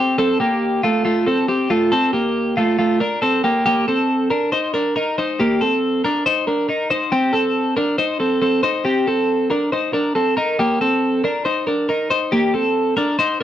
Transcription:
Already playing: C4 G4
0.18 C4 A4
0.40 A#3 G4
0.83 A3 F4
1.05 A3 F4
1.27 C4 A4
1.48 C4 G4
1.70 A3 F4
1.92 C4 A4
2.13 A#3 G4
2.57 A3 F4
2.79 A3 F4
3.00 D4 A#4
3.22 C4 A4
3.44 A#3 G4
3.66 A#3 G4
3.88 C4 A4
4.30 D4 A#4
4.52 D#4 C5
4.74 D4 A#4
4.96 D#4 A#4
5.18 D#4 C5
5.40 A#3 G4
5.61 C4 A4
6.04 D4 A#4
6.26 D#4 C5
6.47 D4 A#4
6.69 D#4 A#4
6.90 D#4 C5
7.12 C4 G4
7.33 C4 A4
7.77 D4 A#4
7.98 D#4 C5
8.20 C4 A4
8.42 C4 A4
8.63 D#4 C5
8.85 C4 G4
9.07 C4 A4
9.50 D4 A#4
9.72 D#4 C5
9.93 D4 A#4
10.15 C4 A4
10.37 D#4 A#4
10.59 A#3 G4
10.81 C4 A4
11.24 D4 A#4
11.45 D#4 C5
11.67 D4 A#4
11.89 D#4 A#4
12.10 D#4 C5
12.32 A#3 G4
12.54 C4 A4
12.97 D4 A#4
13.19 D#4 C5

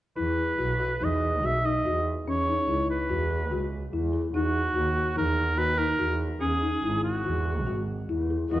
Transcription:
0.17 E2 E4 B4
0.59 B1 F#4
0.80 F#4
1.01 E2 D#4 D#5
1.43 B1 F#4 E5
1.64 D#4 D#5
1.85 E2 F#4
2.28 E2 C#4 C#5
2.48 D#4
2.69 C#2 E4
2.90 B4
3.10 E2 F#4
3.31 G#4
3.51 C#2 F#4
3.93 E2 E4
4.13 G#4
4.34 E2 D#4 F#4
4.75 D#2 F#4
4.96 F#4
5.16 E2 D#4 A#4
5.57 D#2 F#4 B4
5.78 D#4 A#4
5.99 E2 F#4
6.41 E2 C#4 G#4
6.62 D#4
6.83 G#1 E4
7.04 F#4
7.25 E2 F#4
7.46 G#4
7.67 G#1 F#4
8.09 E2 E4
8.30 G#4
8.52 E2 E3 G#3 A#3 E4 F#4 D#5

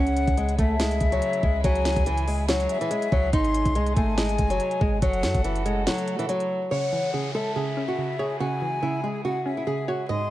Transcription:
Already playing: C#2 C#3 G#3 C#4 E4 G#4 F#5
0.07 closed hi-hat
0.17 closed hi-hat
0.28 C#2, kick, closed hi-hat
0.37 G#3, closed hi-hat
0.49 closed hi-hat
0.59 C#2 A3 E5, kick, closed hi-hat
0.80 G#3, snare, closed hi-hat
0.91 closed hi-hat
1.00 C#2, kick, closed hi-hat
1.12 F#3, closed hi-hat
1.22 closed hi-hat
1.33 closed hi-hat
1.43 C#2 G#3, kick
1.64 C#2 F#3 G#5, kick, closed hi-hat
1.75 closed hi-hat
1.85 snare, closed hi-hat
1.96 C#2, kick, closed hi-hat
2.06 E3, closed hi-hat
2.18 closed hi-hat
2.28 G#3, open hi-hat
2.49 F#3 F#5, snare, closed hi-hat
2.60 closed hi-hat
2.69 E5, closed hi-hat
2.81 E3, closed hi-hat
2.91 G#3, closed hi-hat
3.02 closed hi-hat
3.12 C#2 F#3, kick
3.33 G#1 C3 D#4 C6, kick, closed hi-hat
3.45 closed hi-hat
3.54 closed hi-hat
3.65 C2, kick, closed hi-hat
3.75 G#3, closed hi-hat
3.87 closed hi-hat
3.96 G#1 A3 G#5, kick, closed hi-hat
4.18 G#3, snare, closed hi-hat
4.29 closed hi-hat
4.38 F#1, kick, closed hi-hat
4.50 F#3, closed hi-hat
4.60 closed hi-hat
4.71 closed hi-hat
4.81 G#1 G#3, kick
5.02 F#1 C#3 F#3 A3 F#4 A4 F#5, kick, closed hi-hat
5.13 closed hi-hat
5.23 F#2, snare, closed hi-hat
5.34 F#1, kick, closed hi-hat
5.44 E3, closed hi-hat
5.56 closed hi-hat
5.65 G#3, closed hi-hat
5.87 F#3, snare, closed hi-hat
5.98 closed hi-hat
6.08 closed hi-hat
6.19 E3, closed hi-hat
6.29 F#3, closed hi-hat
6.40 closed hi-hat
6.71 C#3 G#3 E4 G#4 C#5 F#5, downlifter
6.92 E3
7.13 C#3 G#4
7.35 G#3 A4 E5
7.56 C#3 G#4
7.77 C#4
7.88 F#4
7.98 C#3
8.19 G#4 C#5
8.40 C#3 F#4 G#5
8.62 E3
8.82 C#3 E4
9.04 G#3 G#4
9.25 C#3 F#4 F#5
9.46 C#4 E5
9.57 E4
9.67 C#3 G#4
9.88 F#4 C#5
10.09 G#2 C3 D#4 D#5 C6

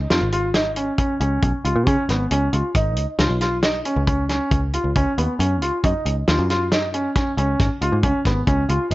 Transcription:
0.10 F2 F4, snare, closed hi-hat
0.21 G#1
0.32 F4, closed hi-hat
0.54 D#4, snare, closed hi-hat
0.76 C#4, closed hi-hat
0.98 C#4, kick, closed hi-hat
1.21 C#2 C#4, closed hi-hat
1.42 B1, kick, closed hi-hat
1.65 C#2 F4, closed hi-hat
1.75 A#2
1.87 C#3 C#4, kick, closed hi-hat
2.09 G#1 B3, snare, closed hi-hat
2.31 C#2 C#4, closed hi-hat
2.53 C#2 F4, closed hi-hat
2.75 G#1 D#4, kick, closed hi-hat
2.97 C#2, closed hi-hat
3.19 C#2 F4, snare, closed hi-hat
3.30 B1
3.41 F4, snare, closed hi-hat
3.63 D#4, snare, closed hi-hat
3.85 C#4, closed hi-hat
3.96 C#2
4.07 C#4, kick, closed hi-hat
4.29 C#4, snare, closed hi-hat
4.51 C#2, kick, closed hi-hat
4.73 F4, closed hi-hat
4.84 C#2
4.96 C#2 C#4, kick, closed hi-hat
5.18 D#2 B3, closed hi-hat
5.39 F#2 C#4, closed hi-hat
5.61 C#2 F4, closed hi-hat
5.84 F#2 D#4, kick, closed hi-hat
6.05 C#2, closed hi-hat
6.28 D#2 F4, snare, closed hi-hat
6.39 F#2
6.50 F4, snare, closed hi-hat
6.72 D#4, snare, closed hi-hat
6.94 C#4, closed hi-hat
7.16 C#4, kick, snare, closed hi-hat
7.37 C#2 C#4, closed hi-hat
7.59 G#1, kick, snare, closed hi-hat
7.81 C#2 F4, closed hi-hat
7.92 G#2
8.03 C#2 C#4, kick, closed hi-hat
8.25 G#1 B3, kick, snare, closed hi-hat
8.47 C#2 C#4, kick, closed hi-hat
8.69 C#2 F4, closed hi-hat
8.91 G#1 D#4, closed hi-hat

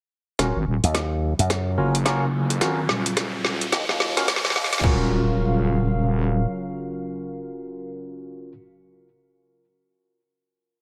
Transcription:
0.39 D#1 C#3 F#3 C#4 F4 F#4 A#4, kick, snare, closed hi-hat, riser
0.56 G#1
0.67 D#1
0.84 D#2, closed hi-hat
0.95 kick, snare, closed hi-hat
1.39 F#2, closed hi-hat
1.50 kick, snare, closed hi-hat
1.78 F#1 C#4 F4 F#4 A#4
1.95 closed hi-hat
2.06 C#4 F4 F#4 A#4, kick, snare, closed hi-hat
2.50 cross-stick, closed hi-hat
2.61 G#1 C#4 F4 F#4 A#4, kick, snare, closed hi-hat
2.89 D#1, snare
3.06 closed hi-hat
3.17 kick, snare, closed hi-hat
3.45 snare
3.61 closed hi-hat
3.72 D#2, kick, snare, closed hi-hat
3.89 D#2, snare
4.00 snare
4.17 C#4 F4 F#4 A#4, snare, closed hi-hat
4.28 C#2, kick, snare, closed hi-hat
4.36 snare
4.45 snare
4.50 snare
4.56 D#2, snare
4.64 snare
4.73 snare, closed hi-hat
4.78 snare
4.83 D#1 C#3 F#3 C#4 F4 F#4 A#4 F5, kick, crash, impact

